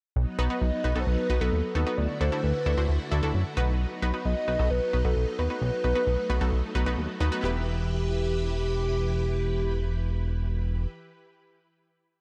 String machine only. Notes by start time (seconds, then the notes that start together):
0.16 F#3 B3 D#4
1.98 D3 A3 E4 F#4
3.57 F#3 B3 D#4
5.39 A3
7.43 E3 E4 G4 B4